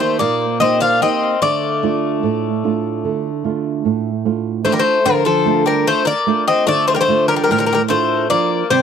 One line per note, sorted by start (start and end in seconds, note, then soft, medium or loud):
0.00 0.18 D#3 medium
0.00 0.19 A3 medium
0.00 0.45 A#3 soft
0.00 0.45 D#4 soft
0.00 0.45 G4 soft
0.00 0.19 C5 medium
0.19 0.99 A#2 medium
0.19 0.58 A#3 medium
0.19 0.57 D5 medium
0.60 1.00 A#3 soft
0.60 0.80 C4 medium
0.60 1.01 D#4 soft
0.60 1.01 G4 medium
0.60 0.79 D#5 loud
0.81 1.00 D4 medium
0.81 1.02 F5 medium
1.01 1.34 A#3 soft
1.01 1.39 C4 medium
1.01 1.34 D#4 soft
1.01 1.34 G4 medium
1.01 1.40 D#5 medium
1.42 2.21 D3 medium
1.42 4.21 A3 medium
1.42 4.22 D5 medium
1.83 2.47 A3 soft
1.83 2.48 D4 soft
1.83 2.48 F4 medium
2.23 3.01 A2 medium
2.64 3.28 A3 soft
2.64 3.28 D4 soft
2.64 3.29 F4 medium
3.05 3.83 D3 medium
3.44 4.09 A3 soft
3.44 4.09 D4 soft
3.44 4.09 F4 medium
3.85 4.63 A2 medium
4.25 4.64 A3 soft
4.25 4.64 D4 soft
4.25 4.64 F4 soft
4.65 4.98 A3 soft
4.65 4.72 A3 medium
4.65 4.98 D4 soft
4.65 4.98 F4 soft
4.65 4.72 C5 medium
4.72 4.79 G3 medium
4.72 4.80 A#4 medium
4.79 5.04 A3 medium
4.79 5.07 C5 medium
5.05 5.84 D3 medium
5.05 5.24 F3 medium
5.05 5.26 A#4 medium
5.25 5.63 F3 medium
5.25 5.64 A4 medium
5.46 6.11 A3 soft
5.46 6.11 D4 soft
5.46 6.11 F4 medium
5.66 5.85 G3 medium
5.66 5.86 A#4 medium
5.87 6.05 A3 medium
5.87 6.07 C5 medium
6.05 6.44 A#3 medium
6.05 6.45 D5 medium
6.27 6.92 A3 soft
6.27 6.92 D4 soft
6.27 6.93 F4 medium
6.47 6.66 C4 medium
6.47 6.68 D#5 loud
6.67 7.46 D3 medium
6.67 6.86 A3 medium
6.67 6.87 D5 loud
6.88 6.95 A3 medium
6.88 6.94 C5 medium
6.95 7.02 G3 medium
6.95 7.00 A#4 medium
7.01 7.27 A3 medium
7.01 7.28 C5 medium
7.08 7.73 A3 soft
7.08 7.73 D4 soft
7.08 7.74 F4 medium
7.28 7.35 G3 medium
7.28 7.35 A#4 medium
7.36 7.43 G3 medium
7.36 7.42 A#4 medium
7.44 7.50 G3 medium
7.44 7.51 A#4 medium
7.50 8.28 A2 medium
7.50 7.57 G3 medium
7.50 7.59 A#4 medium
7.58 7.66 G3 medium
7.58 7.65 A#4 medium
7.66 7.71 G3 medium
7.66 7.73 A#4 medium
7.72 7.80 G3 medium
7.72 7.81 A#4 medium
7.88 8.27 A3 medium
7.88 8.29 D4 soft
7.88 8.30 F4 medium
7.88 8.55 A4 soft
7.88 8.28 C5 medium
8.30 8.62 F3 soft
8.30 8.68 A#3 medium
8.30 8.63 D4 soft
8.30 8.63 F4 medium
8.30 8.68 D5 medium
8.70 8.82 C3 medium
8.70 8.82 G3 medium
8.70 8.82 C5 medium